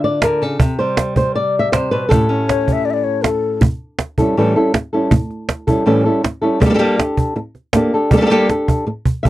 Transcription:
Already playing: nylon-string guitar D3 D4 F4
0.04 nylon-string guitar D5, cajon slap
0.22 nylon-string guitar D3 A#4, cajon slap
0.42 nylon-string guitar C#3 A4
0.60 nylon-string guitar C3, cajon bass
0.79 nylon-string guitar G3 C5
0.97 cajon slap
1.16 nylon-string guitar C5, cajon bass
1.35 nylon-string guitar D5
1.59 nylon-string guitar E5
1.72 nylon-string guitar C3 C5, cajon slap
1.91 nylon-string guitar B2 B4
2.09 nylon-string guitar A2 C#4 E4 G4 A4, cajon bass
2.29 nylon-string guitar C#4
2.48 flute C#5, cajon slap
2.68 nylon-string guitar G4, cajon bass
2.73 flute E5
2.85 flute D5
2.90 flute D5 E5
3.04 flute C#5, cajon slap
3.22 flute A4, cajon slap
3.61 muted nylon-string guitar stroke, cajon bass
3.99 cajon slap
4.18 nylon-string guitar G3 C#4 E4 A4, cajon bass
4.37 nylon-string guitar A2 E3 G3 C#4 E4 A4
4.56 nylon-string guitar G3 C#4 E4 A4
4.74 muted nylon-string guitar stroke, cajon slap
4.93 nylon-string guitar G3 C#4 E4 A4
5.11 muted nylon-string guitar stroke, cajon bass
5.30 cajon slap
5.49 cajon slap
5.67 nylon-string guitar G3 C#4 E4 A4, cajon bass
5.86 nylon-string guitar A2 E3 G3 C#4 E4 A4
6.05 nylon-string guitar G3 C#4 E4 A4
6.23 muted nylon-string guitar stroke, cajon slap
6.41 nylon-string guitar G3 C#4 E4 A4
6.60 nylon-string guitar G3 A#3 D4 G4 A4, cajon bass
6.65 nylon-string guitar A#3 D4 G4 A4
6.70 nylon-string guitar A#3 D4 G4 A4
6.74 nylon-string guitar A#3 D4 G4 A4
6.79 nylon-string guitar G3 A#3 D4 G4 A4, cajon slap
6.98 nylon-string guitar D4 G4 A4, cajon slap
7.17 cajon bass
7.36 muted nylon-string guitar stroke, cajon slap
7.55 cajon slap
7.73 nylon-string guitar A#3 D4 G4 A4, cajon slap
7.94 nylon-string guitar D4 G4 A4
8.11 nylon-string guitar G3 A#3 D4 G4 A4, cajon bass
8.17 nylon-string guitar A#3 D4 G4 A4
8.21 nylon-string guitar A#3 D4 G4 A4
8.25 nylon-string guitar A#3 D4 G4 A4
8.30 nylon-string guitar G3 A#3 D4 G4 A4
8.49 nylon-string guitar D4 G4 A4, cajon slap
8.68 cajon bass
8.87 muted nylon-string guitar stroke
9.06 cajon bass
9.23 nylon-string guitar A#3 D4 E5, cajon bass

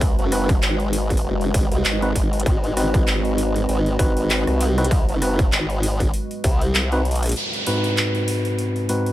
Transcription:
Already playing: wobble bass C2, analog synth pad G#3 F#4 B4 D#5
0.01 kick, open hi-hat
0.19 wobble bass F#1, open hi-hat
0.32 tine electric piano C4 D#4 F#4 B4, cross-stick, open hi-hat
0.49 kick, open hi-hat
0.62 wobble bass G#1, clap, open hi-hat
0.80 open hi-hat
0.93 open hi-hat
1.10 kick, open hi-hat
1.17 open hi-hat
1.24 wobble bass F#1
1.41 open hi-hat
1.54 wobble bass G#1, kick, open hi-hat
1.72 wobble bass C2, open hi-hat
1.85 wobble bass G#1, clap, open hi-hat
2.02 tine electric piano C4 D#4 F#4 B4, open hi-hat
2.15 wobble bass G#1, kick, open hi-hat
2.33 open hi-hat
2.40 closed hi-hat
2.46 wobble bass G#1, kick, open hi-hat
2.64 open hi-hat
2.77 tine electric piano C4 D#4 F#4 B4, cross-stick, open hi-hat
2.94 kick, open hi-hat
3.07 wobble bass G#1, clap, open hi-hat
3.25 open hi-hat
3.38 open hi-hat
3.56 open hi-hat
3.69 wobble bass G#1, open hi-hat
3.86 open hi-hat
3.99 wobble bass G#1, tine electric piano C4 D#4 F#4 B4, kick, open hi-hat
4.17 wobble bass G#1, open hi-hat
4.30 clap, open hi-hat
4.47 wobble bass C2, cross-stick, open hi-hat
4.61 open hi-hat
4.78 tine electric piano C4 D#4 F#4 B4, cross-stick, open hi-hat
4.85 closed hi-hat
4.91 kick, open hi-hat
5.08 wobble bass F#1, open hi-hat
5.22 tine electric piano C4 D#4 F#4 B4, cross-stick, open hi-hat
5.39 kick, open hi-hat
5.52 wobble bass G#1, clap, open hi-hat
5.70 open hi-hat
5.83 open hi-hat
6.00 kick, open hi-hat
6.14 open hi-hat
6.31 open hi-hat
6.44 wobble bass C2, kick, open hi-hat
6.61 open hi-hat
6.75 clap, open hi-hat
6.92 tine electric piano C4 D#4 F#4 B4, open hi-hat
7.05 wobble bass B1, open hi-hat
7.11 open hi-hat
7.16 open hi-hat
7.23 open hi-hat
7.26 closed hi-hat, open hi-hat
7.32 open hi-hat
7.36 analog synth pad G#3 C4 F#4 B4, open hi-hat, downlifter
7.53 open hi-hat
7.66 tine electric piano G#2 C4 D#4 F#4 B4, open hi-hat
7.84 open hi-hat
7.97 clap, open hi-hat
8.15 open hi-hat
8.28 open hi-hat
8.45 open hi-hat
8.59 open hi-hat
8.76 open hi-hat
8.89 tine electric piano G#2 C4 D#4 F#4 B4, open hi-hat
9.06 open hi-hat

